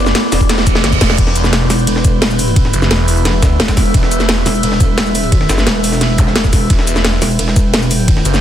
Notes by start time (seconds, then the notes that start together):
Already playing: F#1 E3 B3 B4 D5
0.06 snare, shaker
0.15 snare, closed hi-hat, ride
0.32 E1, snare, open hi-hat, ride, shaker
0.41 kick, shaker
0.49 snare, closed hi-hat, ride, reverse cymbal
0.58 snare
0.67 kick, closed hi-hat, ride, shaker
0.75 snare
0.84 G1, snare, closed hi-hat, ride
0.92 kick, ride, shaker
1.01 E1, kick, snare, open hi-hat, ride, shaker
1.10 snare, ride
1.18 E1 E5, kick, closed hi-hat, crash, ride
1.27 snare
1.36 closed hi-hat, ride, shaker
1.44 snare, shaker
1.53 snare, closed hi-hat, ride
1.70 E1, snare, open hi-hat, ride, shaker
1.79 shaker
1.87 E1, closed hi-hat, ride
1.96 snare
2.05 kick, closed hi-hat, ride, shaker
2.22 snare, closed hi-hat, open hi-hat, ride
2.30 shaker
2.39 open hi-hat, ride, shaker
2.48 ride
2.56 kick, closed hi-hat, ride
2.65 snare
2.73 F#1, closed hi-hat, ride, shaker
2.82 snare, shaker
2.91 E1, snare, closed hi-hat, ride
3.08 open hi-hat, ride, shaker
3.17 shaker
3.25 snare, closed hi-hat, ride
3.43 D2, kick, snare, closed hi-hat, ride, shaker
3.60 E1, snare, closed hi-hat, ride
3.68 kick, snare, ride, shaker
3.77 kick, snare, open hi-hat, ride, shaker
3.86 ride
3.94 E1, kick, closed hi-hat, ride
4.03 snare
4.11 closed hi-hat, ride, shaker
4.20 snare, shaker
4.29 snare, closed hi-hat, ride
4.46 E1, snare, open hi-hat, ride, shaker
4.55 shaker
4.63 E1, closed hi-hat, ride
4.72 snare
4.80 kick, closed hi-hat, ride, shaker
4.98 snare, closed hi-hat, open hi-hat, ride
5.06 shaker
5.15 open hi-hat, ride, shaker
5.24 ride
5.32 kick, closed hi-hat, ride
5.41 snare
5.49 F#1, snare, closed hi-hat, ride, shaker
5.58 snare, shaker
5.67 E1, snare, closed hi-hat, ride
5.84 open hi-hat, ride, shaker
5.93 snare, shaker
6.01 snare, closed hi-hat, ride
6.18 kick, closed hi-hat, ride, zap, shaker
6.27 snare
6.36 snare, closed hi-hat, ride
6.44 kick, snare, shaker
6.53 kick, snare, open hi-hat, ride, shaker
6.70 E1 G5, kick, closed hi-hat, ride
6.79 snare
6.87 closed hi-hat, ride, shaker
6.96 snare, shaker
7.05 snare, closed hi-hat, ride
7.22 E1, snare, open hi-hat, ride, shaker
7.30 shaker
7.39 E1, closed hi-hat, ride
7.48 snare
7.56 kick, closed hi-hat, ride, shaker
7.74 snare, closed hi-hat, open hi-hat, ride
7.82 shaker
7.91 open hi-hat, ride, shaker
7.99 ride
8.08 kick, closed hi-hat, ride
8.17 snare
8.25 F#1, closed hi-hat, ride, shaker
8.34 snare, shaker